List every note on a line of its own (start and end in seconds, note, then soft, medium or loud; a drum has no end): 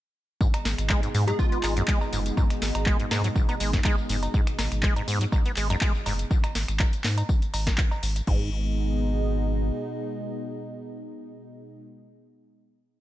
0.41 0.48 G#2 medium
0.41 6.27 B2 medium
0.41 6.27 G#3 medium
0.41 6.27 D#4 medium
0.41 kick loud
0.41 tambourine soft
0.54 finger snap medium
0.54 closed hi-hat medium
0.54 tambourine soft
0.54 cowbell medium
0.65 0.75 G#1 loud
0.65 snare medium
0.65 open hi-hat loud
0.65 tambourine medium
0.78 0.96 G#1 medium
0.78 finger snap medium
0.78 closed hi-hat medium
0.78 tambourine soft
0.90 1.01 G#3 loud
0.90 kick loud
0.90 clap loud
0.90 tambourine soft
0.90 cowbell medium
1.03 1.09 G#2 medium
1.03 closed hi-hat medium
1.03 tambourine soft
1.14 1.25 G#2 loud
1.14 1.33 G#2 medium
1.14 open hi-hat medium
1.14 tambourine medium
1.27 1.31 F#3 medium
1.27 1.37 G#4 medium
1.27 closed hi-hat medium
1.27 tambourine soft
1.27 cowbell medium
1.39 1.46 G#1 medium
1.39 1.77 F4 medium
1.39 kick loud
1.39 tambourine soft
1.52 1.58 B3 medium
1.52 closed hi-hat soft
1.52 tambourine soft
1.63 1.82 G#1 loud
1.63 1.74 G#3 medium
1.63 clap medium
1.63 open hi-hat loud
1.63 tambourine medium
1.63 cowbell medium
1.77 1.83 F#2 loud
1.77 closed hi-hat medium
1.77 tambourine soft
1.88 1.99 G#3 loud
1.88 kick loud
1.88 clap loud
1.88 tambourine soft
2.01 tambourine soft
2.01 cowbell medium
2.13 2.31 F#1 loud
2.13 2.20 G#2 medium
2.13 open hi-hat medium
2.13 tambourine medium
2.26 closed hi-hat medium
2.26 tambourine soft
2.37 2.45 G#2 medium
2.37 kick loud
2.37 tambourine soft
2.37 cowbell medium
2.50 finger snap medium
2.50 closed hi-hat medium
2.50 tambourine soft
2.62 2.72 G#1 loud
2.62 snare medium
2.62 open hi-hat loud
2.62 tambourine medium
2.75 2.93 G#1 medium
2.75 finger snap medium
2.75 closed hi-hat medium
2.75 tambourine soft
2.75 cowbell medium
2.86 2.97 G#3 loud
2.86 kick loud
2.86 clap loud
2.86 tambourine soft
3.00 3.06 G#2 medium
3.00 closed hi-hat medium
3.00 tambourine soft
3.11 3.22 G#2 loud
3.11 3.29 G#2 medium
3.11 snare medium
3.11 open hi-hat loud
3.11 tambourine medium
3.11 cowbell medium
3.24 3.28 F#3 medium
3.24 closed hi-hat medium
3.24 tambourine soft
3.36 3.43 G#1 medium
3.36 kick loud
3.36 tambourine soft
3.49 3.55 B3 medium
3.49 closed hi-hat soft
3.49 tambourine soft
3.49 cowbell medium
3.60 3.79 G#1 loud
3.60 3.71 G#3 medium
3.60 open hi-hat loud
3.60 tambourine medium
3.73 3.80 F#2 loud
3.73 kick medium
3.73 snare medium
3.73 closed hi-hat medium
3.73 tambourine soft
3.84 3.96 G#3 loud
3.84 kick loud
3.84 clap loud
3.84 tambourine soft
3.84 cowbell medium
3.98 tambourine soft
4.09 4.28 F#1 loud
4.09 4.17 G#2 medium
4.09 open hi-hat loud
4.09 tambourine medium
4.23 closed hi-hat medium
4.23 tambourine soft
4.23 cowbell medium
4.34 4.41 G#2 medium
4.34 kick loud
4.34 tambourine soft
4.47 finger snap medium
4.47 closed hi-hat medium
4.47 tambourine soft
4.59 4.68 G#1 loud
4.59 snare medium
4.59 open hi-hat loud
4.59 tambourine medium
4.59 cowbell medium
4.72 4.89 G#1 medium
4.72 finger snap medium
4.72 closed hi-hat medium
4.72 tambourine soft
4.83 4.94 G#3 loud
4.83 kick loud
4.83 clap loud
4.83 tambourine soft
4.96 5.03 G#2 medium
4.96 closed hi-hat medium
4.96 tambourine soft
4.96 cowbell medium
5.08 5.19 G#2 loud
5.08 5.26 G#2 medium
5.08 open hi-hat loud
5.08 tambourine medium
5.21 5.25 F#3 medium
5.21 closed hi-hat medium
5.21 tambourine soft
5.32 5.40 G#1 medium
5.32 kick loud
5.32 tambourine soft
5.32 cowbell medium
5.46 5.52 B3 medium
5.46 closed hi-hat soft
5.46 tambourine soft
5.57 5.75 G#1 loud
5.57 5.68 G#3 medium
5.57 clap medium
5.57 open hi-hat loud
5.57 tambourine medium
5.70 5.76 F#2 loud
5.70 closed hi-hat medium
5.70 tambourine soft
5.70 cowbell medium
5.81 5.92 G#3 loud
5.81 kick loud
5.81 clap loud
5.81 tambourine soft
5.95 tambourine soft
6.06 6.25 F#1 loud
6.06 6.13 G#2 medium
6.06 open hi-hat loud
6.06 tambourine medium
6.06 cowbell medium
6.19 closed hi-hat medium
6.19 tambourine soft
6.31 kick loud
6.31 tambourine soft
6.44 finger snap medium
6.44 closed hi-hat medium
6.44 tambourine soft
6.44 cowbell medium
6.55 6.65 G#1 loud
6.55 snare medium
6.55 open hi-hat loud
6.55 tambourine medium
6.68 6.86 G#1 medium
6.68 finger snap medium
6.68 closed hi-hat medium
6.68 tambourine soft
6.80 kick loud
6.80 clap loud
6.80 tambourine soft
6.80 cowbell medium
6.93 closed hi-hat medium
6.93 tambourine soft
7.04 7.23 G#2 medium
7.04 snare medium
7.04 clap medium
7.04 open hi-hat loud
7.04 tambourine medium
7.18 closed hi-hat medium
7.18 tambourine soft
7.18 cowbell medium
7.29 kick loud
7.29 tambourine soft
7.42 closed hi-hat soft
7.42 tambourine soft
7.54 7.72 G#1 loud
7.54 open hi-hat loud
7.54 tambourine medium
7.54 cowbell medium
7.67 kick medium
7.67 snare medium
7.67 closed hi-hat medium
7.67 tambourine soft
7.78 kick loud
7.78 clap loud
7.78 tambourine soft
7.91 tambourine soft
7.91 cowbell medium
8.03 8.21 G#1 medium
8.03 open hi-hat loud
8.03 tambourine medium
8.16 closed hi-hat medium
8.16 tambourine soft
8.27 9.71 G#1 loud
8.27 8.50 G#2 medium
8.27 11.81 B2 medium
8.27 11.81 G#3 medium
8.27 11.81 D#4 medium
8.27 kick loud
8.27 crash medium